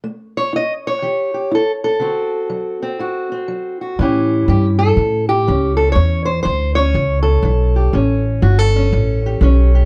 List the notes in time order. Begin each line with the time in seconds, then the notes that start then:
0.04 A3
0.37 C#5
0.53 E4 D#5
0.87 C#5
1.02 E3 G4
1.34 G4
1.51 E4 A4
1.84 A4
2.00 D3 C4 F#4
2.50 F#3
2.82 C4
2.99 A2 F#4
3.32 C4
3.48 F#3
3.81 F#4
3.99 A2 E3 C#4 E4 G4
4.48 G2 E3 G4
4.79 A4
4.97 A2
5.29 G4
5.48 C#2 E3 C#4
5.77 A4
5.92 E2 A2 C#5
6.25 C5
6.43 D2 E3 C5
6.75 C#4 C#5
6.94 C#2 E3
7.23 A4
7.43 B1 E3
7.76 G4
7.93 A1 A2 C#4
8.42 G1 E3 F#4
8.59 A4
8.76 C#4
8.93 A1 E3
9.26 G4
9.41 B1 E3 C#4
9.75 G4